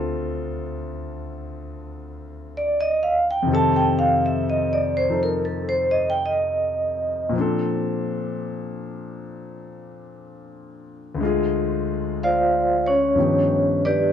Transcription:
Already playing: grand piano D2 D3 C4 F4 A4
2.57 vibraphone D5
2.81 vibraphone D#5
3.03 vibraphone F5
3.31 vibraphone G5
3.43 grand piano F2 C3
3.47 grand piano D#3 C4
3.52 grand piano G4 A4, vibraphone A5
3.76 vibraphone G5
3.99 vibraphone F5
4.26 vibraphone E5
4.50 vibraphone D#5
4.73 vibraphone D5
4.97 vibraphone C5
5.10 grand piano F3 D#4 A4
5.23 vibraphone A#4
5.45 vibraphone A4
5.69 vibraphone C5
5.91 vibraphone D#5
6.10 vibraphone G5
6.26 vibraphone D#5
7.29 grand piano A#2 F3
7.35 grand piano C4 D4
7.41 grand piano A4
11.15 grand piano D2 D3
11.21 grand piano G#3 F4
11.26 grand piano G#4
12.23 vibraphone F4 C5 D5 F5
12.87 vibraphone C#4 C#5
13.15 grand piano G2 F3 B3
13.19 grand piano D#3 G4
13.85 vibraphone D4 G4 B4 D5

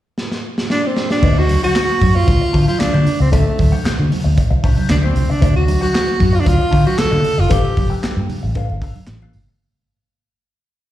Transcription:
0.18 snare
0.32 snare
0.58 snare
0.70 tenor saxophone D4, snare
0.86 tenor saxophone C4
0.97 snare
1.10 tenor saxophone D4, snare
1.22 fingered electric bass D2, clean electric guitar D4 F#4 C5 E5, kick, crash, low conga
1.37 tenor saxophone F#4, muted clean electric guitar stroke, muted conga
1.49 muted clean electric guitar stroke, open hi-hat, high conga
1.63 clean electric guitar D4 F#4 C5 F#5, tenor saxophone F#4, high conga
1.75 clean electric guitar D4 F#4 C5 F#5, snare, clap, closed hi-hat
1.89 muted conga
2.01 fingered electric bass F#2, muted clean electric guitar stroke, kick, open hi-hat, high conga
2.15 tenor saxophone F4, muted clean electric guitar stroke
2.27 fingered electric bass D2, muted clean electric guitar stroke, kick, closed hi-hat, muted conga
2.41 muted clean electric guitar stroke, muted conga
2.53 fingered electric bass D3, clean electric guitar D4 F#4 C5 E5, kick, open hi-hat
2.67 clean electric guitar D4 F#4 C5 E5, tenor saxophone F4, high conga
2.79 tenor saxophone D4, muted clean electric guitar stroke, snare, clap, closed hi-hat, muted conga, high conga
2.93 fingered electric bass D3, clean electric guitar D4 F#4 C5 E5, muted conga
3.06 muted clean electric guitar stroke, open hi-hat, low conga
3.20 fingered electric bass C#2, tenor saxophone C4, muted clean electric guitar stroke
3.32 fingered electric bass D2, tenor saxophone A3, clean electric guitar D4 F#4 C5 E5, kick, closed hi-hat, low conga
3.45 muted clean electric guitar stroke
3.58 fingered electric bass D2, muted clean electric guitar stroke, kick, open hi-hat, high conga
3.72 clean electric guitar D4 F#4 C5 F#5, high conga
3.84 clean electric guitar D4 F#4 C5 F#5, muted fingered electric bass stroke, snare, clap, closed hi-hat, muted conga
3.99 fingered electric bass D3, muted conga
4.10 muted clean electric guitar stroke, open hi-hat, high conga
4.24 fingered electric bass D2, muted clean electric guitar stroke
4.37 muted clean electric guitar stroke, muted fingered electric bass stroke, kick, closed hi-hat, muted conga
4.50 fingered electric bass C2, muted clean electric guitar stroke, muted conga
4.64 clean electric guitar D4 F#4 C5 E5, kick, open hi-hat
4.77 clean electric guitar D4 F#4 C5 E5, high conga
4.89 fingered electric bass D2, tenor saxophone D4, snare, clap, closed hi-hat, muted conga, high conga
5.03 tenor saxophone C4, clean electric guitar D4 F#4 C5 E5, muted conga
5.15 fingered electric bass C2, muted clean electric guitar stroke, open hi-hat, low conga
5.30 tenor saxophone D4, muted clean electric guitar stroke
5.41 fingered electric bass D2, clean electric guitar D4 F#4 C5 E5, kick, closed hi-hat, muted conga, low conga
5.56 tenor saxophone F#4, muted clean electric guitar stroke
5.67 muted clean electric guitar stroke, open hi-hat, high conga
5.81 clean electric guitar D4 F#4 C5 F#5, tenor saxophone F#4, high conga
5.92 clean electric guitar D4 F#4 C5 F#5, snare, clap, closed hi-hat, muted conga
6.08 muted conga
6.19 fingered electric bass F#2, muted clean electric guitar stroke, kick, open hi-hat, high conga
6.33 tenor saxophone F4, muted clean electric guitar stroke
6.40 tenor saxophone D4
6.45 fingered electric bass D2, tenor saxophone F4, muted clean electric guitar stroke, kick, closed hi-hat, muted conga
6.59 muted clean electric guitar stroke, muted conga
6.71 fingered electric bass D3, clean electric guitar D4 F#4 C5 E5, kick, open hi-hat
6.85 clean electric guitar D4 F#4 C5 E5, tenor saxophone F#4, high conga
6.97 tenor saxophone A4, muted clean electric guitar stroke, snare, clap, closed hi-hat, muted conga, high conga
7.11 fingered electric bass D3, clean electric guitar D4 F#4 C5 E5, muted conga
7.23 muted clean electric guitar stroke, open hi-hat, low conga
7.38 fingered electric bass F#1, tenor saxophone F4, muted clean electric guitar stroke
7.49 fingered electric bass G1, clean electric guitar D4 A4 B4 F5, tenor saxophone G4, kick, closed hi-hat, muted conga, low conga
7.65 muted conga
7.77 fingered electric bass G1, muted clean electric guitar stroke, kick, open hi-hat, high conga
7.90 clean electric guitar D4 A4 B4 G5, high conga
8.03 clean electric guitar D4 A4 B4 G5, muted fingered electric bass stroke, snare, clap, closed hi-hat, muted conga
8.17 fingered electric bass G2
8.29 muted clean electric guitar stroke, open hi-hat, high conga, low conga
8.43 fingered electric bass A1, muted clean electric guitar stroke
8.55 clean electric guitar D4 A4 B4 F5, muted fingered electric bass stroke, kick, closed hi-hat, muted conga
8.70 fingered electric bass G1, muted clean electric guitar stroke, muted conga
8.82 clean electric guitar D4 A4 B4 F5, kick, open hi-hat
8.96 muted clean electric guitar stroke, high conga
9.07 fingered electric bass A1, muted clean electric guitar stroke, snare, clap, closed hi-hat, muted conga, high conga
9.22 clean electric guitar D4 A4 B4 F5, muted conga
9.33 fingered electric bass G1, muted clean electric guitar stroke, open hi-hat, low conga
9.48 muted clean electric guitar stroke

